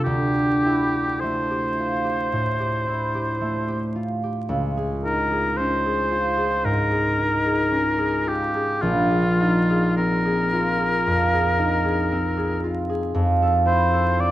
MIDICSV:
0, 0, Header, 1, 3, 480
1, 0, Start_track
1, 0, Tempo, 1153846
1, 24, Time_signature, 4, 2, 24, 8
1, 505, Tempo, 1084991
1, 3865, Tempo, 1119403
1, 4825, Tempo, 1047120
1, 6322, End_track
2, 0, Start_track
2, 0, Title_t, "Oboe"
2, 0, Program_c, 0, 68
2, 16, Note_on_c, 0, 67, 65
2, 501, Note_on_c, 0, 72, 61
2, 507, Note_off_c, 0, 67, 0
2, 1707, Note_off_c, 0, 72, 0
2, 2198, Note_on_c, 0, 70, 62
2, 2431, Note_on_c, 0, 72, 64
2, 2438, Note_off_c, 0, 70, 0
2, 2909, Note_on_c, 0, 70, 70
2, 2916, Note_off_c, 0, 72, 0
2, 3632, Note_on_c, 0, 67, 60
2, 3639, Note_off_c, 0, 70, 0
2, 3868, Note_on_c, 0, 65, 64
2, 3875, Note_off_c, 0, 67, 0
2, 4357, Note_off_c, 0, 65, 0
2, 4360, Note_on_c, 0, 70, 72
2, 5536, Note_off_c, 0, 70, 0
2, 6027, Note_on_c, 0, 72, 69
2, 6270, Note_on_c, 0, 74, 78
2, 6276, Note_off_c, 0, 72, 0
2, 6322, Note_off_c, 0, 74, 0
2, 6322, End_track
3, 0, Start_track
3, 0, Title_t, "Harp"
3, 0, Program_c, 1, 46
3, 0, Note_on_c, 1, 48, 40
3, 0, Note_on_c, 1, 57, 35
3, 0, Note_on_c, 1, 62, 35
3, 0, Note_on_c, 1, 65, 43
3, 0, Note_on_c, 1, 67, 42
3, 25, Note_on_c, 1, 38, 53
3, 45, Note_off_c, 1, 48, 0
3, 139, Note_off_c, 1, 67, 0
3, 144, Note_on_c, 1, 67, 35
3, 273, Note_on_c, 1, 64, 39
3, 385, Note_off_c, 1, 67, 0
3, 390, Note_on_c, 1, 67, 36
3, 507, Note_off_c, 1, 57, 0
3, 513, Note_on_c, 1, 57, 35
3, 630, Note_off_c, 1, 67, 0
3, 635, Note_on_c, 1, 67, 41
3, 758, Note_off_c, 1, 65, 0
3, 763, Note_on_c, 1, 65, 38
3, 867, Note_off_c, 1, 67, 0
3, 872, Note_on_c, 1, 67, 41
3, 997, Note_on_c, 1, 45, 38
3, 1006, Note_off_c, 1, 62, 0
3, 1112, Note_off_c, 1, 67, 0
3, 1117, Note_on_c, 1, 67, 40
3, 1233, Note_off_c, 1, 64, 0
3, 1238, Note_on_c, 1, 64, 34
3, 1355, Note_off_c, 1, 67, 0
3, 1360, Note_on_c, 1, 67, 39
3, 1472, Note_off_c, 1, 57, 0
3, 1477, Note_on_c, 1, 57, 35
3, 1591, Note_off_c, 1, 67, 0
3, 1597, Note_on_c, 1, 67, 39
3, 1712, Note_off_c, 1, 65, 0
3, 1717, Note_on_c, 1, 65, 43
3, 1720, Note_off_c, 1, 38, 0
3, 1837, Note_off_c, 1, 67, 0
3, 1842, Note_on_c, 1, 67, 41
3, 1954, Note_on_c, 1, 37, 54
3, 1975, Note_off_c, 1, 45, 0
3, 1976, Note_off_c, 1, 57, 0
3, 1976, Note_off_c, 1, 64, 0
3, 1977, Note_off_c, 1, 67, 0
3, 2079, Note_on_c, 1, 68, 42
3, 2204, Note_on_c, 1, 63, 40
3, 2314, Note_off_c, 1, 68, 0
3, 2319, Note_on_c, 1, 68, 42
3, 2442, Note_on_c, 1, 61, 40
3, 2555, Note_off_c, 1, 68, 0
3, 2560, Note_on_c, 1, 68, 45
3, 2668, Note_off_c, 1, 65, 0
3, 2673, Note_on_c, 1, 65, 45
3, 2781, Note_off_c, 1, 68, 0
3, 2787, Note_on_c, 1, 68, 41
3, 2907, Note_on_c, 1, 44, 43
3, 3019, Note_off_c, 1, 68, 0
3, 3025, Note_on_c, 1, 68, 42
3, 3140, Note_off_c, 1, 63, 0
3, 3145, Note_on_c, 1, 63, 40
3, 3263, Note_off_c, 1, 68, 0
3, 3268, Note_on_c, 1, 68, 39
3, 3376, Note_off_c, 1, 61, 0
3, 3381, Note_on_c, 1, 61, 39
3, 3496, Note_off_c, 1, 68, 0
3, 3501, Note_on_c, 1, 68, 45
3, 3618, Note_off_c, 1, 65, 0
3, 3623, Note_on_c, 1, 65, 47
3, 3679, Note_off_c, 1, 37, 0
3, 3743, Note_off_c, 1, 68, 0
3, 3748, Note_on_c, 1, 68, 44
3, 3870, Note_on_c, 1, 34, 58
3, 3886, Note_off_c, 1, 44, 0
3, 3987, Note_off_c, 1, 68, 0
3, 3992, Note_on_c, 1, 68, 40
3, 4115, Note_off_c, 1, 63, 0
3, 4121, Note_on_c, 1, 63, 43
3, 4242, Note_off_c, 1, 68, 0
3, 4247, Note_on_c, 1, 68, 46
3, 4364, Note_on_c, 1, 60, 46
3, 4479, Note_off_c, 1, 68, 0
3, 4484, Note_on_c, 1, 68, 46
3, 4597, Note_off_c, 1, 65, 0
3, 4602, Note_on_c, 1, 65, 44
3, 4709, Note_off_c, 1, 68, 0
3, 4714, Note_on_c, 1, 68, 46
3, 4833, Note_on_c, 1, 41, 45
3, 4949, Note_off_c, 1, 68, 0
3, 4955, Note_on_c, 1, 68, 47
3, 5066, Note_off_c, 1, 63, 0
3, 5072, Note_on_c, 1, 63, 46
3, 5085, Note_off_c, 1, 61, 0
3, 5186, Note_off_c, 1, 68, 0
3, 5192, Note_on_c, 1, 68, 51
3, 5309, Note_off_c, 1, 60, 0
3, 5315, Note_on_c, 1, 60, 49
3, 5426, Note_off_c, 1, 68, 0
3, 5431, Note_on_c, 1, 68, 46
3, 5548, Note_off_c, 1, 65, 0
3, 5554, Note_on_c, 1, 65, 47
3, 5592, Note_off_c, 1, 34, 0
3, 5666, Note_off_c, 1, 68, 0
3, 5672, Note_on_c, 1, 68, 52
3, 5781, Note_off_c, 1, 41, 0
3, 5786, Note_on_c, 1, 41, 63
3, 5805, Note_off_c, 1, 63, 0
3, 5807, Note_off_c, 1, 68, 0
3, 5913, Note_on_c, 1, 69, 46
3, 6020, Note_on_c, 1, 64, 47
3, 6142, Note_off_c, 1, 69, 0
3, 6147, Note_on_c, 1, 69, 49
3, 6261, Note_off_c, 1, 60, 0
3, 6266, Note_on_c, 1, 60, 50
3, 6322, Note_off_c, 1, 41, 0
3, 6322, Note_off_c, 1, 60, 0
3, 6322, Note_off_c, 1, 64, 0
3, 6322, Note_off_c, 1, 65, 0
3, 6322, Note_off_c, 1, 69, 0
3, 6322, End_track
0, 0, End_of_file